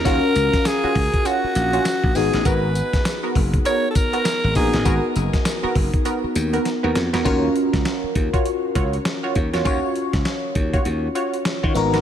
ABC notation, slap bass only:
X:1
M:4/4
L:1/16
Q:"Swing 16ths" 1/4=100
K:Ebm
V:1 name="Slap bass" clef=bass
E,, z D,, z3 D,, z3 B,,,2 z B,,, A,,, =A,,, | A,,,3 z3 G,,,2 z4 z A,,, B,,, =A,,, | A,,, z G,,, z3 G,,, z3 E,,2 z E,, F,, _F,, | E,,2 z D,, z2 E,, z3 D,,2 z2 E,, _F,, |
E,, z2 D,, z2 E,,2 E,,2 z3 E, A,,,2 |]